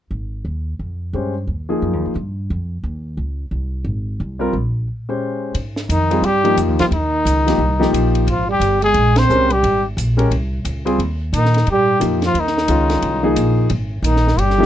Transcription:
0.11 G#1
0.45 D#2
0.79 F2
1.13 G2 G#3 C#4 G4 C5
1.47 D#2
1.69 F3 A#3 D#4 G#4
1.82 F#2
1.93 D#2
2.05 C2
2.15 G2
2.50 F2
2.83 D#2
3.17 C#2
3.51 C2
3.85 G#1
4.20 C2
4.39 G3 C4 F4 A#4
4.53 A#1
5.09 G#3 C#4 G4 C5
5.54 G#2, ride
5.76 snare
5.89 F2 D#3 D#4, hi-hat pedal, ride
6.10 G3 C4 F4 G#4, ride
6.22 G2 G3 G4, ride
6.44 F3 A#3 D#4 G4, ride
6.57 F2, hi-hat pedal, ride
6.68 D#2
6.79 C2 F3 F4, snare, ride
6.91 D#2 D#3 D#4, ride
7.25 C#2, hi-hat pedal, ride
7.47 F3 A#3 D#4 G4, snare, ride
7.58 C2
7.79 F3 A#3 D#4 G4, snare
7.93 A#1, hi-hat pedal, ride
8.15 ride
8.27 G#1 F3 F4, ride
8.48 G3 G4
8.60 G1, hi-hat pedal, ride
8.82 G#3 G#4, ride
8.94 A#1, ride
9.16 C4 C5, snare, ride
9.29 C2 G#3 C#4 G4 A#4, hi-hat pedal
9.50 G3 G4, ride
9.63 G#1, ride
9.97 A#1, hi-hat pedal, ride
10.17 G#3 C#4 G4 A#4, ride
10.31 C2, ride
10.65 C#2, hi-hat pedal, ride
10.85 G3 C4 F4 G#4, ride
10.98 D#2, ride
11.33 A#2 D#3 D#4, hi-hat pedal, ride
11.45 snare
11.54 snare, ride
11.67 G#2 G4, ride
11.72 G3
12.00 F2 F3 A#3 D#4 G4, hi-hat pedal, ride
12.22 F3 F4, snare, ride
12.34 D#2, ride
12.39 D#3 D#4
12.47 snare
12.58 snare
12.68 C#2 D#3 G#3 C#4 F4, hi-hat pedal, ride
12.90 snare, ride
13.02 C2, ride
13.23 F3 A#3 D#4 G#4
13.36 A#1, hi-hat pedal, ride
13.70 G#1, ride
14.02 A#1 D#3 D#4, hi-hat pedal, ride
14.16 snare
14.27 snare
14.37 G1 G3 G4, ride
14.50 snare
14.58 F3 A#3 D#4 G4
14.62 snare

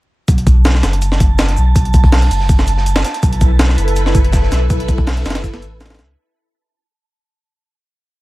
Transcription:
0.28 B1 A5, kick, closed hi-hat, shaker
0.38 closed hi-hat
0.47 kick, closed hi-hat, shaker
0.65 snare, closed hi-hat, shaker
0.75 snare
0.83 F#1, snare, closed hi-hat, shaker
0.93 closed hi-hat
1.02 closed hi-hat, shaker
1.12 snare
1.20 kick, closed hi-hat, shaker
1.38 snare, closed hi-hat, shaker
1.48 snare, closed hi-hat
1.57 B1, shaker
1.76 B1, kick, closed hi-hat, shaker
1.85 closed hi-hat
1.93 kick, closed hi-hat, shaker
2.04 kick, closed hi-hat
2.12 snare, closed hi-hat, open hi-hat
2.22 closed hi-hat
2.31 F#1, closed hi-hat, shaker
2.40 snare
2.49 kick, closed hi-hat, shaker
2.59 snare
2.67 closed hi-hat, shaker
2.77 snare
2.86 closed hi-hat, shaker
2.96 snare
3.04 snare, closed hi-hat, shaker
3.14 snare, closed hi-hat
3.23 B1, kick, closed hi-hat, shaker
3.33 closed hi-hat
3.41 kick, closed hi-hat, shaker
3.50 E4 A4 B4 E5
3.59 snare, closed hi-hat, shaker
3.69 snare
3.78 F#1, closed hi-hat, shaker
3.88 closed hi-hat
3.96 closed hi-hat, shaker
4.06 snare
4.15 kick, closed hi-hat, shaker
4.25 closed hi-hat
4.33 kick, snare, closed hi-hat, shaker
4.43 snare
4.51 B1, snare, closed hi-hat, shaker
4.70 B1, kick, closed hi-hat, shaker
4.80 closed hi-hat
4.88 kick, closed hi-hat, shaker
4.97 E4 A4 B4 E5, kick, closed hi-hat
5.07 snare, closed hi-hat, open hi-hat
5.17 closed hi-hat
5.25 F#1, snare, closed hi-hat, shaker
5.30 snare, closed hi-hat
5.35 snare, closed hi-hat
5.44 kick, snare, closed hi-hat, shaker
5.54 snare
5.62 A1, closed hi-hat, shaker
5.81 snare, closed hi-hat, shaker
5.86 snare, closed hi-hat
5.90 snare, closed hi-hat
5.95 snare, closed hi-hat
5.99 C#2, snare, closed hi-hat, shaker

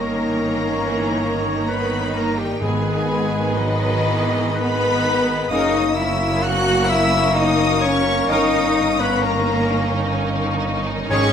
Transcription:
Already playing: G1 D#3 A#3 C#4 D#4 A#4 C#5 A#5 C#6
0.79 E3
1.25 D#3
1.68 B3 D#4 B4 B5
2.15 A#3 A#4 A#5
2.38 G3 G4 G5
2.59 G#1 G#2 D#3 G#3 B3 G#4 B4 B5
2.64 G#5
3.54 D#3 F#3 B3 D#4 B4 D#5
4.05 E3
4.54 D#3 B3 D#4 B4 B5
5.49 F#1 C#3 F#3 A#3 C#4 D#4 A#4 D#5 C#6 D#6
5.95 E4 E5 E6
6.42 F#4 F#5 F#6
6.88 E4 E5 E6
7.35 D#4 D#5 D#6
7.81 C#4 C#5 C#6
8.28 G1 D#3 C#4 D#4 A#4 D#5 D#6
8.99 B3 B4 B5
9.23 A#3 A#4 A#5
11.09 G#1 G#2 D#3 G#3 C#4 G#4 C#5 C#6 D#6

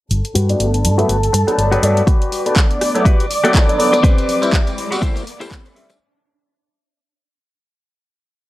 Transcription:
0.11 G1 A4 A5, closed hi-hat
0.25 closed hi-hat
0.35 G2 F#4 G4 B4, closed hi-hat
0.49 A3 B3 D4, closed hi-hat
0.60 G1, closed hi-hat
0.74 closed hi-hat
0.84 G2, closed hi-hat
0.98 F#3 A3 B3 E4 F#4 G4 B4, closed hi-hat
1.09 G1, closed hi-hat
1.23 closed hi-hat
1.33 G2, muted clean electric guitar stroke, closed hi-hat
1.47 F#3 A3 B3 D4, muted clean electric guitar stroke, muted fingered electric bass stroke, closed hi-hat
1.58 G1, closed hi-hat
1.72 F#3 A3 B3 D4 F#4 G4 B4, closed hi-hat
1.83 G2 F#3 A3 B3 D4, closed hi-hat
1.97 closed hi-hat
2.07 G1 F#4 G4 B4 D5 D6, kick, closed hi-hat, riser
2.21 closed hi-hat, tambourine
2.32 G2, open hi-hat
2.45 A3 B3 D4, muted fingered electric bass stroke, closed hi-hat, tambourine
2.56 kick, clap, closed hi-hat
2.71 closed hi-hat, tambourine
2.81 G2, cross-stick, open hi-hat
2.94 F#3 A3 B3 E4, closed hi-hat, tambourine
3.05 F#4 G4 B4, kick, closed hi-hat
3.20 closed hi-hat, tambourine
3.30 G2, open hi-hat
3.43 F#3 A3 B3 D4 F#4 G4 A4, closed hi-hat, tambourine
3.55 kick, clap, closed hi-hat
3.68 F#3 A3 B3 D4, closed hi-hat, tambourine
3.78 G2 F#3 A3 B3 D4, open hi-hat
3.93 muted clean electric guitar stroke, closed hi-hat, tambourine
4.03 C4 G4 B4, kick, closed hi-hat, tambourine
4.18 closed hi-hat, tambourine
4.29 A2, open hi-hat
4.42 G3 C4 E4 B4, closed hi-hat, tambourine
4.53 kick, clap, closed hi-hat
4.67 closed hi-hat, tambourine
4.78 A2, open hi-hat
4.91 G3 B3 C4 F#4, closed hi-hat, tambourine
5.02 E4 G4 C5, kick, closed hi-hat
5.16 closed hi-hat, tambourine
5.27 open hi-hat
5.40 G3 A3 C4 E4 G4 C5, closed hi-hat, tambourine
5.51 kick, clap, closed hi-hat
5.65 G3 A3 C4 E4, closed hi-hat, tambourine
5.75 G3 A3 C4 E4, open hi-hat
5.89 muted clean electric guitar stroke, closed hi-hat, tambourine

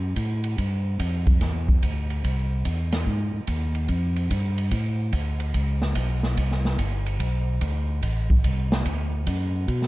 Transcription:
Already playing: F#2
0.16 A2, kick, hi-hat pedal, ride
0.44 ride
0.58 G2, kick, ride
0.99 F2, kick, hi-hat pedal, ride
1.27 kick, ride
1.41 E2, kick, snare, ride
1.69 kick
1.83 D2, kick, hi-hat pedal, ride
2.10 ride
2.24 C2, kick, ride
2.65 E2, kick, hi-hat pedal, ride
2.92 snare, ride
3.06 G#2, kick
3.34 G#2
3.47 D#2, kick, hi-hat pedal, ride
3.75 ride
3.88 F2, kick, ride
4.16 ride
4.31 G2, kick, hi-hat pedal, ride
4.58 ride
4.71 A2, kick, ride
5.13 D2, kick, hi-hat pedal, ride
5.40 ride
5.54 C#2, kick, ride
5.82 snare
5.95 B1, kick, hi-hat pedal, ride
6.23 snare
6.37 C2, kick, ride
6.52 snare
6.65 snare
6.79 G1, kick, hi-hat pedal, ride
7.06 ride
7.20 B1, kick, ride
7.61 D2, kick, hi-hat pedal, ride
8.03 A1, kick, ride
8.30 kick
8.44 C2, kick, hi-hat pedal, ride
8.72 snare
8.86 D2, kick, ride
9.27 F#2, kick, hi-hat pedal, ride
9.68 B2, kick, ride
9.82 snare

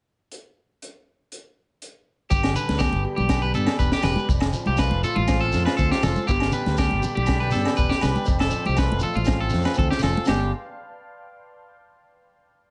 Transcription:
0.32 closed hi-hat
0.82 closed hi-hat
1.32 closed hi-hat
1.82 closed hi-hat
2.30 G1 G2 G4 D5 G5 B5, kick, shekere
2.43 snare, low agogo
2.53 D3 B4, shekere
2.68 D2, snare, high conga, shekere
2.79 B3 G4, kick, snare, low agogo, shekere
2.93 G1, high conga
3.04 G4
3.16 B1 G4, high conga
3.29 D4, kick, snare, high conga, low agogo, shekere
3.42 B4
3.54 G2 B3 A4, shekere
3.67 snare, low agogo
3.79 E1 D4 B4, kick, shekere
3.92 G4, snare
4.03 E1 G4 B4, snare, low conga, low agogo, shekere
4.16 high conga, shekere
4.28 F1 F2 F5 A5 C6, kick, shekere
4.40 muted clean electric guitar stroke, snare, low agogo
4.53 F3, shekere
4.65 C2 G4, high conga, shekere
4.77 A3 B4, kick, snare, low agogo, shekere
4.91 F1, high conga
5.03 F4 A4, shekere
5.15 A1 F4, high conga
5.28 C4, kick, snare, high conga, low agogo, shekere
5.41 A4
5.52 F2 A3, snare, shekere
5.65 B4, snare, low agogo
5.77 D2 C4 A4, kick, shekere
5.91 G4, snare
6.03 F1 F4 A4, snare, low conga, low agogo, shekere
6.16 high conga, shekere
6.27 G1 G2 D3 B3 D4 G4 D5 G5 B5, kick, shekere
6.40 snare, low agogo
6.52 D3 B4, shekere
6.66 D2, snare, high conga, shekere
6.77 B3 G4, kick, snare, low agogo, shekere
6.91 G1, high conga
7.02 G4, low conga, shekere
7.15 B1 G4, high conga
7.26 D4, kick, snare, high conga, low agogo, shekere
7.40 B4
7.51 B3 A4, snare, shekere
7.55 G2
7.65 snare, low agogo
7.76 E1 D4 B4, kick, shekere
7.89 G4, snare
8.01 G4 B4, snare, low conga, low agogo, shekere
8.05 C2
8.15 high conga, shekere
8.24 F1 F2, kick, shekere
8.29 F5 A5 C6
8.39 A4, snare, low agogo
8.49 F3, shekere
8.65 C2 G4, high conga, shekere
8.74 A3 B4, kick, low agogo, shekere
8.79 snare
8.92 F1, high conga
8.99 F4 A4, low conga, shekere
9.14 A1 F4, high conga, shekere
9.25 C4, kick, snare, high conga, low agogo, shekere
9.41 A4
9.49 A3, shekere
9.54 F2, snare, low conga
9.62 B4, snare, low agogo, shekere
9.74 C4, kick, shekere
9.79 D2 A4, low conga
9.91 G4, snare
9.99 F4, low agogo, shekere
10.03 F1 A4, snare, low conga
10.13 shekere
10.17 high conga
10.25 G1 G2 D3 B3 D4, snare, china, low agogo, shekere
10.29 G4, high conga

